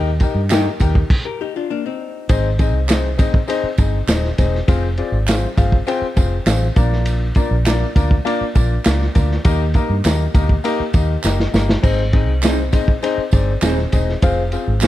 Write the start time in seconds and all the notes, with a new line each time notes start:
Already playing: D#2
0.20 D#4 G4 A#4 D#5 G5, kick, ride, tambourine
0.35 G2
0.50 D#4 G4 A#4 D#5 G5, snare, clap, ride, tambourine
0.80 D#2 D#4 G4 A#4 D#5 G5, kick, ride, tambourine
0.95 kick
1.10 kick, crash
1.25 G4 A#4
1.41 D#4 G4
1.56 D4 F4
1.70 A#3 D4
1.86 C4 D#4
2.29 G#1 C4 D#4 G#4 C5 D#5, kick, ride, tambourine
2.59 C4 D#4 G#4 C5 D#5, kick, ride, tambourine
2.73 C2
2.88 C4 D#4 G#4 C5 D#5, snare, clap, ride, tambourine
3.18 G#1 C4 D#4 G#4 C5 D#5, kick, ride, tambourine
3.34 kick
3.48 C4 D#4 G#4 C5 D#5, ride, tambourine
3.63 muted fingered electric bass stroke
3.78 G1 C4 D#4 G#4 C5 D#5, kick, ride, tambourine
4.08 D#1 C4 D#4 G#4 C5 D#5, snare, clap, ride, tambourine
4.24 snare
4.38 E1 C4 D#4 G#4 C5 D#5, kick, ride, tambourine
4.55 snare
4.68 F1 C4 F4 G#4 C5 F5, kick, ride, tambourine
4.98 C4 F4 G#4 C5 D5, ride
5.12 G#1
5.28 C4 F4 G#4 C5 F5, snare, clap, ride, tambourine
5.57 G1 C4 F4 G#4 C5 F5, kick, ride, tambourine
5.72 kick
5.87 C4 F4 G#4 C5 G5, ride, tambourine
6.02 muted fingered electric bass stroke
6.16 F1 C4 F4 G#4 C5 F5, kick, ride, tambourine
6.46 A1 C4 F4 G#4 C5 F5, snare, clap, ride, tambourine
6.76 A#1 A#3 D4 F4 A#4 D5, kick, ride, tambourine
6.92 snare
7.06 ride, tambourine
7.35 A#3 D4 F4 A#4 D5, kick, ride, tambourine
7.51 A#1
7.65 A#3 D4 F4 A#4 D5, snare, clap, ride, tambourine
7.95 D2 A#3 D4 F4 A#4 D5, kick, ride, tambourine
8.11 kick
8.25 A#3 D4 F4 A#4 D5, ride, tambourine
8.41 muted fingered electric bass stroke
8.55 A#1 A#3 D4 F4 A#4 D5, kick, ride, tambourine
8.85 C#2 A#3 D4 F4 A#4 D5, snare, clap, ride, tambourine
9.01 snare
9.15 D2 A#3 D4 F4 A#4 D5, kick, ride, tambourine
9.31 snare
9.45 D#2 A#3 D#4 G4 A#4 D#5, kick, ride, tambourine
9.74 A#3 D#4 G4 A#4 D#5, kick, ride, tambourine
9.90 G2
10.04 D#2 A#3 D#4 G4 A#4 D#5, snare, clap, ride, tambourine
10.34 D2 A#3 D#4 G4 A#4 D#5, kick, ride, tambourine
10.49 kick
10.64 A#3 D#4 G4 A#4 D#5, ride, tambourine
10.80 muted fingered electric bass stroke
10.93 D#2 A#3 D#4 G4 A#4 D#5, kick, ride, tambourine
11.24 F#1 A#3 D#4 G4 A#4 D#5 G5, snare, clap, tambourine
11.40 D#5, snare
11.53 G1 A#3 D#4 G4 A#4 D#5, snare, tambourine
11.69 snare
11.83 G#1 C4 D#4 G#4 C5 D#5, kick, tambourine, crash
12.12 C4 D#4 G#4 C5 D#5, kick, ride
12.27 C2
12.43 C4 D#4 G#4 C5 D#5, snare, clap, ride, tambourine
12.72 G#1 C4 D#4 G#4 C5 D#5, kick, ride, tambourine
12.88 kick
13.02 C4 D#4 G#4 C5 D#5, ride, tambourine
13.18 muted fingered electric bass stroke
13.31 G1 C4 D#4 G#4 C5 D5, kick, ride, tambourine
13.62 D#1 C4 D#4 G#4 C5 D#5, snare, clap, ride, tambourine
13.78 snare
13.92 E1 C4 D#4 G#4 C5 D#5, kick, ride, tambourine
14.09 snare
14.22 F1 C4 F4 G#4 C5 F5, kick, ride, tambourine
14.52 C4 F4 G#4 C5 F5, ride, tambourine
14.67 G#1
14.81 C4 F4 G#4 C5 F5, snare, clap, ride, tambourine